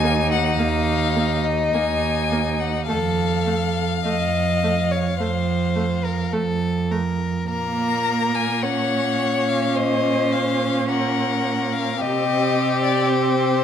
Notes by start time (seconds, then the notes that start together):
Already playing: D#2 D#4 G#5
0.04 A#3
0.32 F#5
0.57 D#2 A#3 F5
1.15 A#3
1.43 D#5
1.73 D#2 A#3 G#5
2.32 A#3
2.60 F#5
2.87 F2 A3 A4 F5
3.46 A3
4.04 F2 A3 D#5
4.63 A3
4.91 C#5
5.18 F2 A3 C5
5.76 A3
6.05 A#4
6.32 F2 A3 A4
6.91 A3 A#4
7.48 A#2 A#3 A#4 A#5
8.35 G#5
8.63 C#4 C#5 F#5
9.48 F5
9.76 C5 D#5
10.32 F5
10.89 A#4 F#5
11.72 F5
12.00 C3 C4 G4 D#5
12.83 D5
13.09 C5